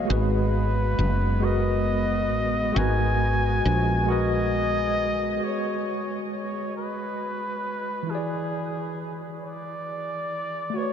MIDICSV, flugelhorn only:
0, 0, Header, 1, 2, 480
1, 0, Start_track
1, 0, Key_signature, 5, "minor"
1, 0, Tempo, 888889
1, 42, Time_signature, 6, 3, 24, 8
1, 5902, End_track
2, 0, Start_track
2, 0, Title_t, "Flugelhorn"
2, 0, Program_c, 0, 56
2, 55, Note_on_c, 0, 71, 85
2, 777, Note_on_c, 0, 75, 100
2, 785, Note_off_c, 0, 71, 0
2, 1498, Note_on_c, 0, 80, 100
2, 1506, Note_off_c, 0, 75, 0
2, 2210, Note_off_c, 0, 80, 0
2, 2218, Note_on_c, 0, 75, 121
2, 2937, Note_on_c, 0, 73, 85
2, 2945, Note_off_c, 0, 75, 0
2, 3323, Note_off_c, 0, 73, 0
2, 3415, Note_on_c, 0, 73, 73
2, 3632, Note_off_c, 0, 73, 0
2, 3656, Note_on_c, 0, 71, 80
2, 4373, Note_on_c, 0, 68, 70
2, 4381, Note_off_c, 0, 71, 0
2, 4942, Note_off_c, 0, 68, 0
2, 5092, Note_on_c, 0, 74, 81
2, 5809, Note_on_c, 0, 73, 76
2, 5817, Note_off_c, 0, 74, 0
2, 5902, Note_off_c, 0, 73, 0
2, 5902, End_track
0, 0, End_of_file